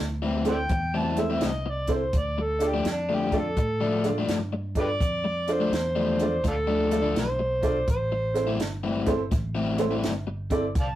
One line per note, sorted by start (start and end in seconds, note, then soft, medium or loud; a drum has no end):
0.00 0.68 D2 medium
0.22 0.49 A2 medium
0.22 0.49 E3 medium
0.22 0.49 C4 medium
0.22 0.49 E4 medium
0.45 0.57 C4 medium
0.45 0.57 E4 medium
0.45 0.58 A4 medium
0.45 0.58 C5 medium
0.45 snare soft
0.45 closed hi-hat medium
0.51 0.57 D5 medium
0.51 0.57 E5 medium
0.51 0.99 G5 loud
0.69 1.39 E2 medium
0.69 muted overdriven electric guitar stroke soft
0.69 kick loud
0.69 closed hi-hat medium
0.94 1.21 A2 medium
0.94 1.21 E3 medium
0.94 1.21 C4 medium
0.94 1.21 E4 medium
0.94 1.22 A5 medium
1.16 1.29 C4 medium
1.16 1.29 E4 medium
1.16 1.30 A4 medium
1.16 1.30 C5 medium
1.16 snare soft
1.16 closed hi-hat medium
1.21 1.46 E5 medium
1.30 1.49 A2 medium
1.30 1.49 E3 medium
1.30 1.49 C4 medium
1.30 1.49 E4 medium
1.41 2.11 C2 medium
1.41 1.72 D#5 medium
1.41 snare loud
1.41 closed hi-hat medium
1.66 muted overdriven electric guitar stroke soft
1.71 1.91 D5 medium
1.87 2.00 C4 medium
1.87 2.01 E4 medium
1.87 2.01 A4 medium
1.87 2.01 C5 medium
1.87 kick medium
1.87 snare soft
1.87 closed hi-hat medium
1.94 2.19 C5 medium
2.13 2.83 D2 medium
2.13 kick loud
2.13 closed hi-hat medium
2.17 2.44 D5 medium
2.38 muted overdriven electric guitar stroke soft
2.42 2.70 A4 medium
2.59 2.72 D4 medium
2.59 2.73 F4 medium
2.59 2.73 A4 medium
2.59 2.73 D5 medium
2.59 snare soft
2.59 closed hi-hat medium
2.68 2.88 G4 medium
2.74 2.84 D3 medium
2.74 2.84 F3 medium
2.74 2.85 A3 medium
2.74 2.85 D4 medium
2.85 3.55 F2 medium
2.85 muted overdriven electric guitar stroke soft
2.85 snare loud
2.85 closed hi-hat medium
2.91 3.11 D4 medium
3.09 3.36 D3 medium
3.09 3.36 F3 medium
3.09 3.36 A3 medium
3.09 3.36 D4 medium
3.14 3.41 G4 medium
3.32 3.44 D4 medium
3.32 3.44 F4 medium
3.32 3.45 A4 medium
3.32 3.45 D5 medium
3.32 kick medium
3.32 snare soft
3.32 closed hi-hat medium
3.39 4.06 A4 loud
3.57 4.27 A2 medium
3.57 muted overdriven electric guitar stroke soft
3.57 kick loud
3.57 closed hi-hat medium
3.81 4.08 D3 medium
3.81 4.08 F3 medium
3.81 4.08 A3 medium
3.81 4.08 D4 medium
4.04 4.16 D4 medium
4.04 4.16 F4 medium
4.04 4.17 A4 medium
4.04 4.17 D5 medium
4.04 snare soft
4.04 closed hi-hat medium
4.18 4.37 D3 medium
4.18 4.37 F3 medium
4.18 4.37 A3 medium
4.18 4.37 D4 medium
4.28 4.98 G2 medium
4.28 snare loud
4.28 closed hi-hat medium
4.53 muted overdriven electric guitar stroke medium
4.75 4.88 D4 medium
4.75 4.88 F4 medium
4.75 4.89 A4 medium
4.75 4.89 D5 medium
4.75 kick medium
4.75 snare soft
4.75 closed hi-hat medium
4.80 4.86 G4 medium
4.80 4.89 B4 medium
4.80 5.54 D5 loud
5.01 5.70 F2 medium
5.01 kick loud
5.01 closed hi-hat medium
5.24 muted overdriven electric guitar stroke medium
5.47 5.60 D4 medium
5.47 5.60 F4 medium
5.47 5.60 A4 medium
5.47 5.61 D5 medium
5.47 snare soft
5.47 closed hi-hat medium
5.52 6.44 C5 medium
5.60 5.72 D3 medium
5.60 5.72 F3 medium
5.60 5.72 A3 medium
5.60 5.73 D4 medium
5.72 6.42 E2 loud
5.72 muted overdriven electric guitar stroke soft
5.72 snare loud
5.72 closed hi-hat medium
5.96 6.24 D3 medium
5.96 6.24 F3 medium
5.96 6.23 A3 medium
5.96 6.23 D4 medium
6.19 6.32 D4 medium
6.19 6.32 F4 medium
6.19 6.33 A4 medium
6.19 6.33 D5 medium
6.19 snare soft
6.19 closed hi-hat medium
6.44 7.14 D2 medium
6.44 6.55 D4 medium
6.44 6.56 F4 medium
6.44 7.16 A4 loud
6.44 muted overdriven electric guitar stroke soft
6.44 kick medium
6.44 snare soft
6.44 closed hi-hat medium
6.67 6.95 D3 medium
6.67 6.95 F3 medium
6.67 6.95 A3 medium
6.67 6.95 D4 medium
6.90 7.03 D4 medium
6.90 7.04 F4 medium
6.90 7.04 A4 medium
6.90 7.04 D5 medium
6.90 snare soft
6.90 closed hi-hat medium
7.02 7.23 D3 medium
7.02 7.23 F3 medium
7.02 7.23 A3 medium
7.02 7.23 D4 medium
7.16 7.86 B1 medium
7.16 snare loud
7.16 closed hi-hat medium
7.20 7.88 C5 medium
7.39 muted overdriven electric guitar stroke medium
7.62 7.75 D4 medium
7.62 7.75 F4 medium
7.62 7.76 A4 medium
7.62 7.76 D5 medium
7.62 kick medium
7.62 snare soft
7.62 closed hi-hat medium
7.88 8.58 A1 medium
7.88 8.59 C5 medium
7.88 kick loud
7.88 closed hi-hat medium
8.12 muted overdriven electric guitar stroke medium
8.34 8.47 C4 medium
8.34 8.47 E4 medium
8.34 8.47 A4 medium
8.34 8.48 C5 medium
8.34 snare soft
8.34 closed hi-hat medium
8.47 8.59 A2 medium
8.47 8.59 E3 medium
8.47 8.59 C4 medium
8.47 8.59 E4 medium
8.59 9.29 G1 medium
8.59 muted overdriven electric guitar stroke soft
8.59 snare loud
8.59 closed hi-hat medium
8.83 9.11 A2 medium
8.83 9.11 E3 medium
8.83 9.11 C4 medium
8.83 9.11 E4 medium
9.06 9.19 C4 medium
9.06 9.19 E4 medium
9.06 9.19 A4 medium
9.06 9.20 C5 medium
9.06 kick medium
9.06 snare soft
9.06 closed hi-hat medium
9.31 10.01 A1 medium
9.31 muted overdriven electric guitar stroke soft
9.31 kick loud
9.31 snare soft
9.31 closed hi-hat medium
9.55 9.83 A2 medium
9.55 9.83 E3 medium
9.55 9.82 C4 medium
9.55 9.82 E4 medium
9.78 9.91 C4 medium
9.78 9.91 E4 medium
9.78 9.91 A4 medium
9.78 9.92 C5 loud
9.78 snare soft
9.78 closed hi-hat medium
9.91 10.11 A2 medium
9.91 10.11 E3 medium
9.91 10.11 C4 medium
9.91 10.11 E4 medium
10.03 10.73 G1 medium
10.03 snare loud
10.03 closed hi-hat medium
10.27 muted overdriven electric guitar stroke soft
10.50 10.63 C4 medium
10.50 10.63 E4 medium
10.50 10.64 A4 medium
10.50 10.64 D5 medium
10.50 kick medium
10.50 snare soft
10.50 closed hi-hat medium
10.75 10.95 C2 medium
10.75 kick loud
10.75 snare soft
10.75 closed hi-hat medium
10.80 10.87 D5 medium
10.80 10.89 F5 medium
10.80 10.95 A5 medium